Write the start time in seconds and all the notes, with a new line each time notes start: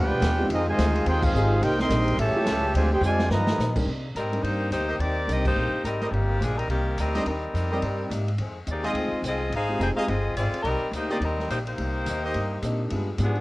Already playing: F3 G3 G#3 B3 D4 F4 G4 G#4 B4 D5 G5
0.02 D2
0.11 B1
0.19 D#2 G3 B3 F4 G#4, snare, hi-hat pedal, ride
0.38 G#3 C4 D#4 F4 G4
0.47 F2 D#3 F3 C4 F4, ride
0.51 G#3 C4 D#4 F4 G#4 D#5
0.67 C3 D#3 G#3 F4 C5 D#5 G#5
0.77 D2 F3 C4 D#4 G#4, snare, hi-hat pedal, ride
0.95 ride
1.05 D#2 F3 C4 D#4 G4 G#4 C5 G5, ride
1.22 G#3 C4 D#4 F4 G#4 C5 F5, kick, crash
1.33 G#1 F3 G#3 C4 D#4 F4 G4 G#4, hi-hat pedal
1.60 C2 C3 G3 A#3 D#4 G4 A#4 C5 G5, ride
1.79 D#3 G3 C4 A#4 D#5 G5 C6, snare
1.89 A#1 C3 A#3 C4 D4 D#4 G4, snare, hi-hat pedal, ride
2.08 ride
2.17 A1 A2 C#3 E3 G3 A3 C#4 F4 G4 C#5 E5 A5, ride
2.34 A3 C#4 E4 F4 G4, muted upright bass stroke
2.46 C#2 A2 G3 C#4 F4, snare, hi-hat pedal, ride
2.74 D2 C3 D3 F3 G#3 C4 F4 C5 D5 G#5, ride
2.93 D#4 G4 G#4 C5 G5
3.01 F2 C3 D3 F3 G#3 C4 F4 G#5, hi-hat pedal
3.05 C5 D5
3.19 snare
3.30 G2 A#2 D#3 F3 G3 B3 D#4 F4 B4 D#5 A#5, snare
3.47 snare
3.58 G2 A#2 F3 B3 D#4, snare, hi-hat pedal
3.76 G3 C4 D4 D#4 A#4, kick, crash
3.86 C3 G3 A#3 D#4
4.15 G#2 C3 G3 A#3 C4 D#4 A#4, hi-hat pedal, ride
4.32 G3 C4 D4 D#4 A#4, ride
4.43 G2 C3 G3 A#3 D#4 G4 C5, ride
4.70 D2 C3 G3 A#3 D#4 G4 C5, hi-hat pedal, ride
4.88 G4 A#4 C5 D#5
4.99 D#2 C3 G3 A#3 C4 D#4 G4 A#4 D5, ride
5.27 C2 C3 G3 A#3 C4 D4 D#4 G4 A#4, hi-hat pedal, ride
5.31 A#4 D#5
5.45 A#3 D#4 G4 C5, kick, crash
5.55 A#1 C3 G3 A#3 D#4
5.72 muted upright bass stroke
5.84 G#1 C3 G3 A#3 C4 D#4 A#4, hi-hat pedal, ride
6.00 G4 A#4 C5 D#5, snare, ride
6.11 G1 C3 D#3 G3 A#3 C4 D#4 G4, ride
6.40 A#1 C3 F3 G3 A#3 D4 D#4 G#4, hi-hat pedal, ride
6.55 G3 C4 D#4 A#4, ride
6.68 C2 C3 D#3 G3 A#3 C4 G4, ride
6.72 A#3 D#4
6.97 D2 C3 G3 A#3 C4 D#4 A#4, hi-hat pedal, ride
7.14 G3 C4 D4 D#4 G4 A#4 C5 D#5, snare, ride
7.25 D#2 C3 G3 A#3 C4 D#4 A#4, ride
7.54 F2 C3 G3 A#3 D#4, hi-hat pedal, ride
7.71 G3 C4 D#4 G4 A#4 C5 D5 D#5
7.82 G2 C3 G3 A#3 D#4, ride
8.10 G#2 C3 G3 A#3 D#4, hi-hat pedal, ride
8.28 ride
8.38 F2 D#3 G#3 C4, ride
8.67 D#2 F2 D#3 G#3 C4 G4, hi-hat pedal, ride
8.71 A#3 D#4 D5
8.83 G#3 C4 D#4 F4 G#4 C5 D#5 G5, ride
8.87 C4
8.93 D2 F2 D#3 G#3 C4, ride
9.12 muted upright bass stroke
9.22 C2 F2 D#3 G#3 C4, hi-hat pedal, ride
9.27 C4 F4 G#4 D#5
9.50 G#1 F2 D#3 G#3, ride
9.54 C4 D#4 G#4 C5 F5
9.68 G#3 C4 D#4 F4 G4
9.79 F1 F2 D#3 G#3 C4 D#4 G#4 C5 G5, hi-hat pedal, ride
9.96 G#3 C4 D#4 F4 G4 G#4 C5 D#5 F5, muted upright bass stroke
10.07 G1 F2 D#3 G#3 C4 F4 G#4 D#5, ride
10.35 G#1 F2 D#3 G#3 C4 F4 G#4 D5, hi-hat pedal, ride
10.39 C4
10.52 muted upright bass stroke, ride
10.63 C2 C3 G3 A#3 C4 D#4 A#4, ride
10.81 muted upright bass stroke
10.91 D2 C3 G3 A#3 D#4, hi-hat pedal, ride
10.95 A#3 D#4 G4 C5
11.09 A#3 C4 D4 D#4 G4 A#4 C5 D5 D#5
11.20 D#2 C3 G3 A#3 C4 D#4 A#4, ride
11.39 snare
11.48 A#1 C3 G3 A#3 D#4 G4 C5, hi-hat pedal, ride
11.67 A#3 D#4 G4 C5, ride
11.77 C2 C3 G3 A#3 D#4, ride
12.06 D#2 C3 G3 A#3 D#4, hi-hat pedal, ride
12.23 G4 A#4 C5 D#5
12.34 G2 C3 G3 A#3 D#4, ride
12.62 A#2 C3 G3 A#3 C4 D4 D#4 G4, hi-hat pedal, ride
12.90 G2 G3 G#3 B3 D4 F4 G4 G#4, ride
13.18 G#2 F3 G3 G#3 B3 D4 F4 G4 G#4, hi-hat pedal, ride
13.23 B3 D4 G#4
13.35 ride